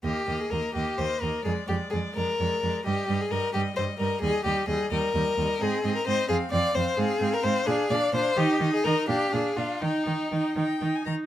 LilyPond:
<<
  \new Staff \with { instrumentName = "Violin" } { \time 6/8 \key ees \major \tempo 4. = 86 ees''8 ees''8 ees''8 ees''8 ees''8 ees''8 | d''8 d''8 d''8 d''8 d''8 d''8 | ees''8 ees''8 ees''8 ees''8 ees''8 ees''8 | ees''8 ees''8 ees''8 ees''8 ees''8 ees''8 |
ees''8 ees''8 ees''8 f''8 f''8 f''8 | f''8 f''8 f''8 f''8 f''8 f''8 | ees''8 ees''8 ees''8 f''8 f''8 f''8 | g''8 g''8 g''8 g''8. aes''16 bes''8 | }
  \new Staff \with { instrumentName = "Violin" } { \time 6/8 \key ees \major g'8. aes'16 bes'8 g'8 c''8 bes'8 | aes'8 g'8 aes'8 bes'4. | g'8. aes'16 bes'8 g'8 c''8 bes'8 | aes'8 g'8 aes'8 bes'4. |
aes'8. bes'16 c''8 aes'8 d''8 c''8 | aes'8. bes'16 c''8 aes'8 d''8 c''8 | g'8. aes'16 bes'8 g'8 aes'8 f'8 | ees'4. r4. | }
  \new Staff \with { instrumentName = "Viola" } { \time 6/8 \key ees \major bes8 bes8 bes8 bes8 bes8 bes8 | aes8 aes8 aes8 aes8 aes8 aes8 | g8 g8 g8 g8 g8 g8 | g8 g8 g8 g8 g8 g8 |
c'8 c'8 c'8 c'8 c'8 c'8 | c'8 c'8 c'8 d'8 d'8 d'8 | ees'8 ees'8 ees'8 d'8 d'8 d'8 | ees'8 ees'8 ees'8 ees'8 ees'8 ees'8 | }
  \new Staff \with { instrumentName = "Cello" } { \clef bass \time 6/8 \key ees \major ees,8 ees,8 ees,8 ees,8 ees,8 ees,8 | f,8 f,8 f,8 f,8 f,8 f,8 | g,8 g,8 g,8 g,8 g,8 g,8 | ees,8 ees,8 ees,8 ees,8 ees,8 ees,8 |
aes,8 aes,8 aes,8 f,8 f,8 f,8 | aes,8 aes,8 aes,8 bes,8 bes,8 bes,8 | ees8 ees8 ees8 bes,8 bes,8 bes,8 | ees8 ees8 ees8 ees8 ees8 ees8 | }
>>